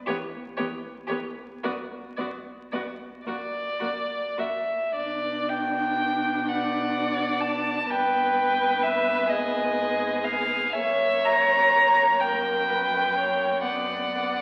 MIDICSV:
0, 0, Header, 1, 5, 480
1, 0, Start_track
1, 0, Key_signature, 2, "minor"
1, 0, Tempo, 1038062
1, 754, Tempo, 1086957
1, 755, Time_signature, 6, 3, 24, 8
1, 1714, Tempo, 1149425
1, 2194, Tempo, 1043478
1, 2674, Tempo, 940439
1, 4594, Tempo, 991736
1, 5554, Tempo, 953895
1, 6899, End_track
2, 0, Start_track
2, 0, Title_t, "Violin"
2, 0, Program_c, 0, 40
2, 34, Note_on_c, 0, 73, 61
2, 71, Note_off_c, 0, 73, 0
2, 263, Note_on_c, 0, 73, 58
2, 300, Note_off_c, 0, 73, 0
2, 501, Note_on_c, 0, 73, 60
2, 538, Note_off_c, 0, 73, 0
2, 757, Note_on_c, 0, 74, 58
2, 792, Note_off_c, 0, 74, 0
2, 991, Note_on_c, 0, 74, 55
2, 1027, Note_off_c, 0, 74, 0
2, 1235, Note_on_c, 0, 74, 54
2, 1271, Note_off_c, 0, 74, 0
2, 1469, Note_on_c, 0, 74, 79
2, 1957, Note_on_c, 0, 76, 61
2, 1964, Note_off_c, 0, 74, 0
2, 2192, Note_off_c, 0, 76, 0
2, 2194, Note_on_c, 0, 74, 77
2, 2442, Note_on_c, 0, 79, 84
2, 2449, Note_off_c, 0, 74, 0
2, 2922, Note_on_c, 0, 78, 64
2, 2930, Note_off_c, 0, 79, 0
2, 3393, Note_on_c, 0, 81, 79
2, 3401, Note_off_c, 0, 78, 0
2, 3646, Note_on_c, 0, 79, 80
2, 3654, Note_off_c, 0, 81, 0
2, 4118, Note_on_c, 0, 76, 96
2, 4126, Note_off_c, 0, 79, 0
2, 4359, Note_on_c, 0, 75, 77
2, 4367, Note_off_c, 0, 76, 0
2, 4828, Note_on_c, 0, 77, 81
2, 4836, Note_off_c, 0, 75, 0
2, 5071, Note_off_c, 0, 77, 0
2, 5074, Note_on_c, 0, 76, 101
2, 5317, Note_on_c, 0, 82, 106
2, 5324, Note_off_c, 0, 76, 0
2, 5781, Note_on_c, 0, 79, 86
2, 5789, Note_off_c, 0, 82, 0
2, 6501, Note_off_c, 0, 79, 0
2, 6504, Note_on_c, 0, 78, 71
2, 6899, Note_off_c, 0, 78, 0
2, 6899, End_track
3, 0, Start_track
3, 0, Title_t, "Violin"
3, 0, Program_c, 1, 40
3, 29, Note_on_c, 1, 67, 66
3, 66, Note_off_c, 1, 67, 0
3, 264, Note_on_c, 1, 67, 57
3, 301, Note_off_c, 1, 67, 0
3, 495, Note_on_c, 1, 67, 61
3, 532, Note_off_c, 1, 67, 0
3, 756, Note_on_c, 1, 66, 62
3, 791, Note_off_c, 1, 66, 0
3, 1004, Note_on_c, 1, 66, 51
3, 1040, Note_off_c, 1, 66, 0
3, 1246, Note_on_c, 1, 66, 54
3, 1281, Note_off_c, 1, 66, 0
3, 1478, Note_on_c, 1, 66, 58
3, 1513, Note_off_c, 1, 66, 0
3, 1710, Note_on_c, 1, 66, 53
3, 1744, Note_off_c, 1, 66, 0
3, 1954, Note_on_c, 1, 66, 48
3, 1987, Note_off_c, 1, 66, 0
3, 2917, Note_on_c, 1, 74, 67
3, 3619, Note_off_c, 1, 74, 0
3, 3647, Note_on_c, 1, 71, 80
3, 4347, Note_off_c, 1, 71, 0
3, 4360, Note_on_c, 1, 68, 77
3, 5067, Note_off_c, 1, 68, 0
3, 5080, Note_on_c, 1, 73, 92
3, 5790, Note_on_c, 1, 70, 71
3, 5797, Note_off_c, 1, 73, 0
3, 6028, Note_on_c, 1, 71, 57
3, 6035, Note_off_c, 1, 70, 0
3, 6268, Note_on_c, 1, 73, 63
3, 6275, Note_off_c, 1, 71, 0
3, 6508, Note_off_c, 1, 73, 0
3, 6514, Note_on_c, 1, 74, 54
3, 6899, Note_off_c, 1, 74, 0
3, 6899, End_track
4, 0, Start_track
4, 0, Title_t, "Viola"
4, 0, Program_c, 2, 41
4, 41, Note_on_c, 2, 59, 64
4, 78, Note_off_c, 2, 59, 0
4, 271, Note_on_c, 2, 59, 60
4, 308, Note_off_c, 2, 59, 0
4, 510, Note_on_c, 2, 59, 56
4, 547, Note_off_c, 2, 59, 0
4, 758, Note_on_c, 2, 59, 62
4, 793, Note_off_c, 2, 59, 0
4, 998, Note_on_c, 2, 59, 52
4, 1033, Note_off_c, 2, 59, 0
4, 1239, Note_on_c, 2, 59, 55
4, 1274, Note_off_c, 2, 59, 0
4, 1474, Note_on_c, 2, 58, 49
4, 1509, Note_off_c, 2, 58, 0
4, 1715, Note_on_c, 2, 58, 56
4, 1749, Note_off_c, 2, 58, 0
4, 1953, Note_on_c, 2, 58, 46
4, 1987, Note_off_c, 2, 58, 0
4, 2193, Note_on_c, 2, 62, 57
4, 3618, Note_off_c, 2, 62, 0
4, 3636, Note_on_c, 2, 59, 70
4, 5060, Note_off_c, 2, 59, 0
4, 5080, Note_on_c, 2, 58, 67
4, 6485, Note_off_c, 2, 58, 0
4, 6508, Note_on_c, 2, 59, 45
4, 6899, Note_off_c, 2, 59, 0
4, 6899, End_track
5, 0, Start_track
5, 0, Title_t, "Cello"
5, 0, Program_c, 3, 42
5, 36, Note_on_c, 3, 40, 80
5, 73, Note_off_c, 3, 40, 0
5, 273, Note_on_c, 3, 40, 69
5, 310, Note_off_c, 3, 40, 0
5, 506, Note_on_c, 3, 40, 62
5, 543, Note_off_c, 3, 40, 0
5, 759, Note_on_c, 3, 42, 69
5, 794, Note_off_c, 3, 42, 0
5, 1000, Note_on_c, 3, 42, 64
5, 1035, Note_off_c, 3, 42, 0
5, 1239, Note_on_c, 3, 42, 67
5, 1275, Note_off_c, 3, 42, 0
5, 1474, Note_on_c, 3, 42, 58
5, 1509, Note_off_c, 3, 42, 0
5, 1716, Note_on_c, 3, 42, 58
5, 1750, Note_off_c, 3, 42, 0
5, 1953, Note_on_c, 3, 42, 55
5, 1987, Note_off_c, 3, 42, 0
5, 2195, Note_on_c, 3, 47, 61
5, 3620, Note_off_c, 3, 47, 0
5, 3640, Note_on_c, 3, 43, 69
5, 4358, Note_on_c, 3, 44, 76
5, 4365, Note_off_c, 3, 43, 0
5, 5075, Note_on_c, 3, 42, 80
5, 5083, Note_off_c, 3, 44, 0
5, 6899, Note_off_c, 3, 42, 0
5, 6899, End_track
0, 0, End_of_file